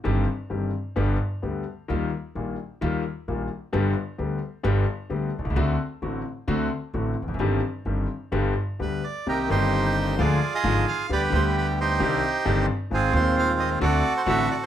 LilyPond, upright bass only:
\new Staff \with { instrumentName = "Upright bass" } { \clef bass \time 4/4 \key c \minor \tempo 4 = 131 g,,16. r8 r32 g,,16. r8 r32 g,,16. r8 r32 d,16. r8 r32 | ees,16. r8 r32 bes,,16. r8 r32 ees,16. r8 r32 bes,,16. r8 r32 | g,,16. r8 r32 d,16. r8 r32 g,,16. r8 r32 d,16. r16 b,,32 c,32 des,32 | d,16. r8 r32 a,,16. r8 r32 d,16. r8 r32 a,,16. r16 e,,32 f,,32 fis,,32 |
g,,16. r8 r32 g,,16. r8 r32 g,,16. r8 r32 d,16. r8 r32 | c,16. r32 g,,4~ g,,16. r32 d,16. r8 r32 aes,,16. r8 r32 | d,16. r32 d,4~ d,16. r32 c,16. r8 r32 g,,16. r8 r32 | aes,,16. r32 ees,4~ ees,16. r32 d,16. r8 r32 a,,16. r8 r32 | }